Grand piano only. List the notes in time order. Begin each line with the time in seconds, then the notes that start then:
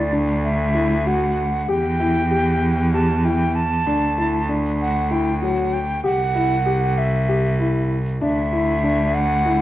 0.12 D4
0.74 E4
1.06 F#4
1.68 G4
2.00 E4
2.31 G4
2.94 G4
3.25 E4
3.87 D4
4.18 E4
4.49 D4
5.11 E4
5.42 F#3
6.04 G4
6.35 E4
6.66 G4
7.29 G4
7.59 E4
8.21 D4
8.52 E4
8.83 D4
9.45 E4